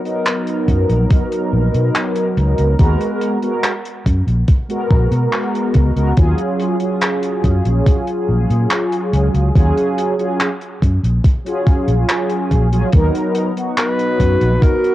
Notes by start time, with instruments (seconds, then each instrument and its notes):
0.03 analog polysynth F#3 B3 D#4 A#4, closed hi-hat
0.26 clap, closed hi-hat
0.47 closed hi-hat
0.68 fingered electric bass F#2, kick, closed hi-hat
0.89 fingered electric bass A#1, closed hi-hat
1.10 kick, closed hi-hat
1.32 closed hi-hat
1.53 fingered electric bass A#1
1.74 fingered electric bass B2, closed hi-hat
1.95 clap, closed hi-hat
2.15 closed hi-hat
2.37 fingered electric bass C#2, closed hi-hat
2.58 fingered electric bass C#2, closed hi-hat
2.78 fingered electric bass D#2, analog polysynth G#3 B3 F#4 A#4, kick, closed hi-hat
3.01 closed hi-hat
3.21 closed hi-hat
3.42 analog polysynth G#3 B3 F#4 A#4, closed hi-hat
3.64 clap, closed hi-hat
3.85 closed hi-hat
4.06 fingered electric bass F#2, kick, closed hi-hat
4.27 fingered electric bass A#1, closed hi-hat
4.48 kick, closed hi-hat
4.68 analog polysynth G#3 B3 F#4 A#4, closed hi-hat
4.91 fingered electric bass A#1, kick
5.11 fingered electric bass B2, closed hi-hat
5.32 clap, closed hi-hat
5.55 closed hi-hat
5.74 fingered electric bass C#2, kick, closed hi-hat
5.96 fingered electric bass C#2, analog polysynth G#3 B3 F#4 A#4, closed hi-hat
6.17 fingered electric bass D#2, analog polysynth F#3 C#4 F4 G#4, kick, closed hi-hat
6.38 closed hi-hat
6.60 closed hi-hat
6.79 analog polysynth F#3 C#4 F4 G#4, closed hi-hat
7.01 clap, closed hi-hat
7.23 closed hi-hat
7.44 fingered electric bass F#2, kick, closed hi-hat
7.65 fingered electric bass A#1, closed hi-hat
7.86 kick, closed hi-hat
8.07 closed hi-hat
8.29 fingered electric bass A#1
8.50 fingered electric bass A#2, closed hi-hat
8.71 clap, closed hi-hat
8.92 closed hi-hat
9.13 fingered electric bass C#2, closed hi-hat
9.34 fingered electric bass C#2, closed hi-hat
9.55 fingered electric bass D#2, analog polysynth F#3 C#4 F4 G#4, kick, closed hi-hat
9.77 closed hi-hat
9.98 closed hi-hat
10.18 analog polysynth F#3 C#4 F4 G#4, closed hi-hat
10.40 clap, closed hi-hat
10.61 closed hi-hat
10.82 fingered electric bass F#2, kick, closed hi-hat
11.03 fingered electric bass A#1, closed hi-hat
11.24 kick, closed hi-hat
11.44 analog polysynth F#3 C#4 F4 G#4, closed hi-hat
11.67 kick, closed hi-hat
11.88 fingered electric bass A#1, closed hi-hat
12.09 clap, closed hi-hat
12.30 closed hi-hat
12.51 fingered electric bass A#1, kick, closed hi-hat
12.72 analog polysynth F#3 C#4 F4 G#4, closed hi-hat
12.93 fingered electric bass D#2, analog polysynth F#3 B3 D#4 A#4, kick, closed hi-hat
13.15 closed hi-hat
13.35 closed hi-hat
13.56 analog polysynth F#3 B3 D#4 F#4, closed hi-hat
13.78 alto saxophone B4, clap, closed hi-hat
13.99 closed hi-hat
14.20 fingered electric bass F#2, kick, closed hi-hat
14.41 fingered electric bass A#1, closed hi-hat
14.63 alto saxophone A#4, kick, closed hi-hat
14.85 closed hi-hat